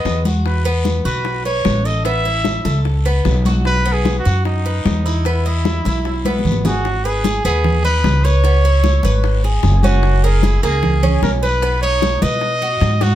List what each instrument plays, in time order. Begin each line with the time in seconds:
Already playing: cuban tres B3, trumpet D#5
0.05 upright bass E2, high bongo, low bongo, high conga, short guiro
0.25 cuban tres F#4, high bongo, high conga, short guiro
0.46 trumpet B4, high bongo, long guiro
0.65 cuban tres B3, high conga
0.85 high bongo, high conga, short guiro
1.05 upright bass B1, cuban tres F#4, trumpet B4, high conga, short guiro
1.25 high bongo, high conga, long guiro
1.45 cuban tres B4, trumpet C#5, high conga
1.65 upright bass A1, high bongo, low bongo, high conga, short guiro
1.85 cuban tres A4, trumpet D#5, short guiro
2.05 cuban tres B3, trumpet E5, high bongo, high conga, long guiro
2.25 cuban tres E4, high conga
2.45 high bongo, high conga, short guiro
2.65 upright bass C#2, cuban tres A4, high bongo, high conga, short guiro
2.85 high bongo, high conga, long guiro
3.05 cuban tres B3, high bongo, high conga
3.25 upright bass B1, high bongo, low bongo, high conga, short guiro
3.45 cuban tres F#4, high bongo, high conga, short guiro
3.65 trumpet B4, high bongo, high conga, long guiro
3.86 cuban tres B3
3.93 trumpet G#4
4.05 high bongo, high conga, short guiro
4.19 trumpet F#4
4.25 upright bass F#2, cuban tres F#4, high conga, short guiro
4.45 trumpet D#4, high bongo, high conga, long guiro
4.65 cuban tres B4, high conga
4.85 upright bass E2, high bongo, low bongo, high conga, short guiro
5.06 cuban tres E4, short guiro
5.25 cuban tres B3, trumpet E4, high bongo, high conga, long guiro
5.45 cuban tres D#5, high conga
5.65 high bongo, high conga, short guiro
5.85 upright bass B1, cuban tres E4, high bongo, high conga, short guiro
6.05 high bongo, high conga, long guiro
6.25 cuban tres B3, high bongo, high conga
6.39 low bongo
6.45 upright bass G#1, low conga, short guiro
6.52 low bongo
6.65 trumpet F#4, cuban tres G#4, low bongo, low conga, short guiro
6.85 high bongo, high conga, long guiro
7.05 trumpet G#4, cuban tres B4, high conga
7.24 cuban tres G#4, high bongo, high conga, short guiro
7.44 upright bass D#2, cuban tres B3, trumpet G#4, high conga, short guiro
7.64 high bongo, high conga, low conga, long guiro
7.84 cuban tres D#4, trumpet B4, high conga
8.04 upright bass C#2, high bongo, low bongo, high conga, short guiro
8.24 cuban tres B4, trumpet C#5, high conga, short guiro
8.44 cuban tres B3, high bongo, high conga, long guiro
8.64 cuban tres E4, high conga
8.84 high bongo, high conga, short guiro
9.03 upright bass G#1, cuban tres B4, high bongo, high conga, short guiro
9.23 high bongo, high conga, long guiro
9.44 cuban tres G#4, high bongo, high conga
9.63 upright bass F#1, high bongo, low bongo, high conga, short guiro
9.83 cuban tres C#4, trumpet F#4, high bongo, high conga, short guiro
10.03 high bongo, high conga, long guiro
10.23 trumpet G#4, cuban tres A#4, high conga
10.43 cuban tres E4, high bongo, high conga, short guiro
10.63 upright bass C#2, cuban tres A#3, trumpet G#4, high conga, short guiro
10.83 high bongo, high conga, low conga, long guiro
11.03 cuban tres C#4, high conga, low conga
11.22 upright bass B1, trumpet A#4, high bongo, low bongo, high conga, short guiro
11.43 cuban tres B4, trumpet B4, high conga, short guiro
11.62 cuban tres B3, high bongo, high conga, long guiro
11.82 cuban tres D#4, trumpet C#5, high conga
12.02 high bongo, high conga, short guiro
12.21 upright bass B2, cuban tres B4, trumpet D#5, high bongo, high conga, short guiro
12.41 high bongo, high conga, long guiro
12.61 cuban tres F#4, high bongo, high conga
12.81 upright bass G#2, high bongo, low bongo, high conga, short guiro
13.01 cuban tres D#4, trumpet F#4, high bongo, high conga, short guiro